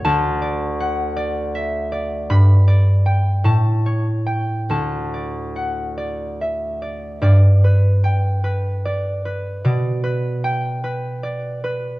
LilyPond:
<<
  \new Staff \with { instrumentName = "Harp" } { \time 6/8 \key d \major \tempo 4. = 50 << { a''2. | b''4. a''4. | a''2. | \key g \major r4 g''2~ |
g''4 g''2 | } \\ { r8 d''8 fis''8 d''8 e''8 d''8~ | d''8 d''8 g''4 cis''8 g''8 | r8 d''8 fis''8 d''8 e''8 d''8 | d''8 b'4 b'8 d''8 b'8 |
d''8 b'4 b'8 d''8 b'8 | } >> }
  \new Staff \with { instrumentName = "Harp" } { \clef bass \time 6/8 \key d \major d,2. | g,4. a,4. | d,2. | \key g \major g,2. |
b,2. | }
>>